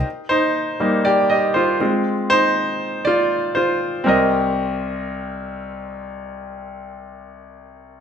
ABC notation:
X:1
M:4/4
L:1/16
Q:1/4=120
K:Cm
V:1 name="Grand piano"
z2 [Ec]4 z2 [Gd]2 [Ge]2 [Fc]3 z | z2 [Ec]4 z2 [Fd]4 [Fc]3 z | [CGBe]16- | [CGBe]16 |]
V:2 name="Grand piano"
z6 [G,B,E]2 z6 [A,CF]2 | z16 | C,,16- | C,,16 |]